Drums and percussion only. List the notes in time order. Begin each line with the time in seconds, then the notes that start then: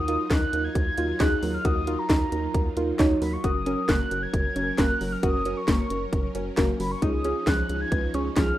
0.08 closed hi-hat
0.30 kick, snare, clap, closed hi-hat
0.53 closed hi-hat
0.75 kick, closed hi-hat
0.98 closed hi-hat
1.20 kick, snare, clap, closed hi-hat
1.43 open hi-hat
1.65 kick, closed hi-hat
1.87 closed hi-hat
2.09 kick, snare, clap, closed hi-hat
2.32 closed hi-hat
2.54 kick, closed hi-hat
2.77 closed hi-hat
2.99 kick, snare, clap, closed hi-hat
3.22 open hi-hat
3.44 kick, closed hi-hat
3.66 closed hi-hat
3.89 kick, snare, clap, closed hi-hat
4.11 closed hi-hat
4.34 kick, closed hi-hat
4.56 closed hi-hat
4.78 kick, snare, clap, closed hi-hat
5.01 open hi-hat
5.23 kick, closed hi-hat
5.45 closed hi-hat
5.68 kick, snare, clap, closed hi-hat
5.90 closed hi-hat
6.13 kick, closed hi-hat
6.35 closed hi-hat
6.57 kick, snare, clap, closed hi-hat
6.80 open hi-hat
7.02 kick, closed hi-hat
7.24 closed hi-hat
7.47 kick, snare, clap, closed hi-hat
7.69 closed hi-hat
7.92 kick, closed hi-hat
8.14 closed hi-hat
8.36 kick, snare, clap, closed hi-hat